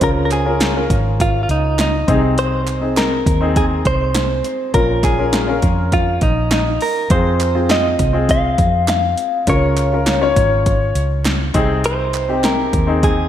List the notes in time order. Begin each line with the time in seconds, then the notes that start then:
0.01 C#2 C#3 C#4 F4 A#4, kick, closed hi-hat
0.25 A#4
0.31 G#4, clap, closed hi-hat
0.45 C#4 F4 A#4
0.61 snare, clap, closed hi-hat
0.75 C#4 F4 A#4
0.90 G#1, kick, closed hi-hat
1.20 F4, kick, closed hi-hat
1.43 F4
1.49 C#2 D#4, closed hi-hat
1.79 D#4, snare, clap, closed hi-hat
2.08 C2 C3 C4 D#4 G#4, kick, closed hi-hat
2.38 C5, closed hi-hat
2.67 clap, closed hi-hat
2.80 C4 D#4 G#4
2.97 A#4, snare, clap, closed hi-hat
3.26 D#2, kick, closed hi-hat
3.41 C4 D#4 G#4
3.56 G#4, kick, closed hi-hat
3.85 C2 C5, kick, closed hi-hat
4.15 snare, clap, closed hi-hat
4.44 closed hi-hat
4.74 A#1 A#2 C#4 F4 A#4, kick, closed hi-hat
5.03 G#4, kick, snare, clap, closed hi-hat
5.18 C#4 F4 A#4
5.33 snare, clap, closed hi-hat
5.47 C#4 F4 A#4
5.62 F2, kick, closed hi-hat
5.92 F4, kick, closed hi-hat
6.21 A#1 D#4, kick, closed hi-hat
6.51 D#4, snare, clap, closed hi-hat
6.81 A#4, open hi-hat
7.10 F2 C4 F4 G#4 C5, kick, closed hi-hat
7.40 clap, closed hi-hat
7.54 C4 F4 G#4
7.70 D#5, snare, clap, closed hi-hat
7.99 C2, kick, closed hi-hat
8.13 C4 F4 G#4
8.29 F5, kick, closed hi-hat
8.58 F2, kick, closed hi-hat
8.88 F5, snare, clap, closed hi-hat
9.18 closed hi-hat
9.47 C#2 C#3 C#4 F4 A#4 C#5, kick, closed hi-hat
9.77 clap, closed hi-hat
9.92 C#4 F4 A#4
10.06 snare, clap, closed hi-hat
10.21 C#4 F4 C#5
10.36 G#1, kick, closed hi-hat
10.66 kick, closed hi-hat
10.95 C#2, closed hi-hat
11.25 snare, clap, closed hi-hat
11.54 C2 C3 C4 D#4 G#4, kick, closed hi-hat
11.84 C5, closed hi-hat
12.13 clap, closed hi-hat
12.29 C4 D#4 G4
12.44 A#4, snare, clap, closed hi-hat
12.73 D#2, kick, closed hi-hat
12.87 C4 D#4 G#4
13.03 G#4, kick, closed hi-hat